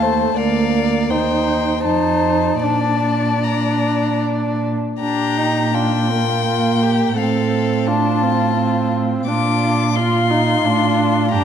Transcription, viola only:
Already playing: A3
0.37 A#3
1.10 D#4
1.84 D#4
2.63 D4
3.44 D4
5.01 D4
5.37 D#4
5.74 D4
6.11 A#3
7.18 C4
7.87 D4
8.23 C4
8.58 C4
9.27 D4
9.97 F4
10.30 D#4
10.64 D4
11.32 D4

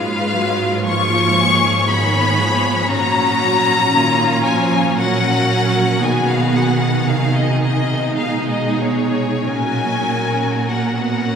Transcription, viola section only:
Already playing: G#3
0.30 F#3
0.85 F3 A#3
1.88 D#3 B3
2.38 F3
2.91 F#3 C#4
3.92 D#3
4.44 F3
4.97 F#3 C#4
5.49 F#3
6.00 D#3 B3
7.07 D#4
8.16 G#3
9.44 F#3 C#4
10.68 A#3
10.98 B3
11.27 C#4

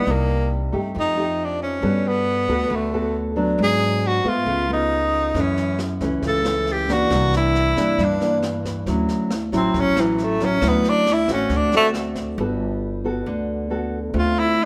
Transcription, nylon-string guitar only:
Already playing: G3 A#3 D#4
0.07 C3
0.72 A3 D#4 G4
0.95 F3
1.17 A3 D#4 G4
1.82 G3 B3 F#4 A4
2.48 B3 F#4 A4
2.70 D3
2.93 B3 F#4 A4
3.36 F#3 B3 D4
3.58 G#2
4.24 A3 B3 F4
4.46 C#3
4.69 A3 B3 F4
5.35 F#2 E3 A3 C#4
6.01 E3 A3 C#4
6.23 C#3
6.45 E3 A3 C#4
6.89 E3 A#3 D4
7.11 C3
7.76 E3 A#3 D4
7.98 G2
8.21 E3 A#3 D4
8.87 D3 F#3 C#4 E4
9.53 F#3 C#4 E4
9.74 A2
9.97 F#3 C#4 E4
10.41 F#3 C#4 E4
10.62 D3 F#3 C#4 E4
11.29 A3 C4 F#4
11.51 D3
11.73 A3 C4 F#4
12.40 G3 B3 F#4 A4
13.04 B3 F#4 A4
13.26 D3
13.70 B3 F#4 A4
14.14 D3 A3 C4 F4

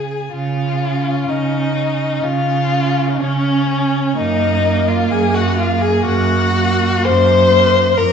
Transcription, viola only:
0.81 C#4
1.76 C#4
2.72 C#4
3.70 C#4
4.18 A#3
4.65 A#3
5.58 A#3
6.54 A#3
7.53 A#3

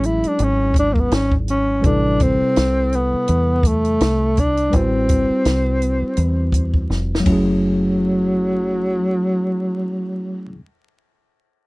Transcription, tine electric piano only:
Already playing: F#3 G#3 C#4 E4 G#4
1.81 C3 G3 B4
1.86 E4 A4
4.70 G3 C4 B4
4.75 E4 F#4
7.20 F#3 A3
7.26 C#4 E4
7.32 G#4

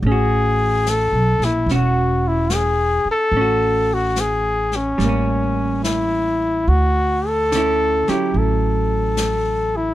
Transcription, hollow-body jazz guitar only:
0.07 C#4
0.12 F#4
1.71 C#4 F#4
3.37 C#4
3.41 F#4
4.98 G3
5.04 A#3
5.09 C#4
7.52 D3 C#4
7.57 E4
8.08 F#3 C#4 E4

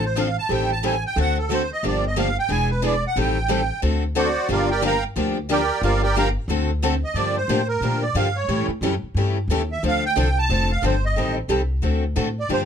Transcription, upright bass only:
Already playing: A1
0.49 A1
1.16 D2
1.83 G1
2.49 E1
3.16 A1
3.83 D2
4.49 G1
5.16 D2
5.82 G1
6.48 D2
7.14 G2
7.48 A2
7.81 A#2
8.14 G2
8.48 A2
8.68 muted upright bass stroke
8.81 F#2
9.02 muted upright bass stroke
9.14 G2
9.48 D#2
9.83 D2
10.16 C2
10.49 F1
10.82 G1
11.17 A1
11.48 C2
11.82 D2
12.17 A2
12.49 G2

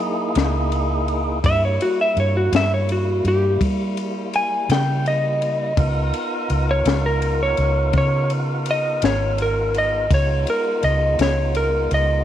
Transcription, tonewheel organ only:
Already playing: A#3 D#4 E4 G#4
1.44 G3 A#3 E4
5.78 B3 D#4 F4 A#4
10.10 G#3 B3 D#4 F4

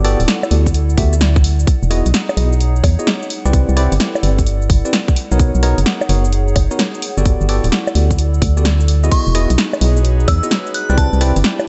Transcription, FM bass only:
Already playing: G1
0.20 D1
0.51 D2
0.98 D2
1.83 E1
2.06 B1
2.37 B1
2.84 E2
3.46 C2
3.69 C2
3.92 G1
4.23 G1
4.70 G1
5.32 B1
5.55 B1
5.78 F#1
6.09 F#1
6.56 F#1
7.18 G1
7.41 G1
7.64 D1
7.95 D2
8.42 D2
9.27 E1
9.50 B1
9.81 B1
10.28 E2
10.90 C2
11.13 C2
11.36 G1

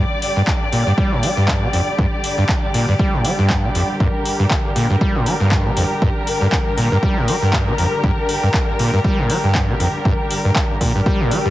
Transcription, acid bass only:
0.36 G2
0.72 A#2
0.87 G2
0.98 G3
1.12 A2
1.23 G3
1.37 G2
1.62 C3
1.73 F2
1.99 G2
2.38 G2
2.74 A#2
2.88 G2
2.99 G3
3.14 A2
3.25 G3
3.39 G2
3.64 C3
3.75 F2
4.00 G2
4.40 G2
4.76 A#2
4.90 G2
5.01 G3
5.15 A2
5.26 G3
5.40 G2
5.66 C3
5.77 F2
6.02 G2
6.41 G2
6.78 A#2
6.92 G2
7.03 G3
7.17 A2
7.28 G3
7.42 G2
7.67 C3
7.78 F2
8.04 G2
8.43 G2
8.79 A#2
8.93 G2
9.04 G3
9.19 A2
9.30 G3
9.44 G2
9.69 C3
9.80 F2
10.05 G2
10.45 G2
10.81 A#2
10.95 G2
11.06 G3
11.20 A2
11.31 G3
11.46 G2

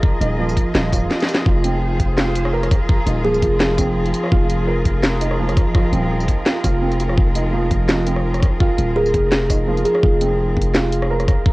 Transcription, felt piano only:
Already playing: F3 D#4 F4 A#4
0.21 D#4
0.39 F3
0.75 F4
0.92 F4
1.46 F4
1.64 C4
2.17 F4
2.53 A#4
3.07 D#4
3.25 F3
3.60 F4
3.78 C4
4.32 F4
4.67 A#4
5.21 D#4
5.39 F3
5.75 F4
5.93 C4
6.46 F4
6.64 F4
6.82 C4
6.99 F4
7.35 D#4
7.53 F3
7.89 F4
8.07 C4
8.60 F4
8.96 A#4
9.50 D#4
9.67 F3
10.03 F4
10.21 C4
10.75 F4
11.11 A#4

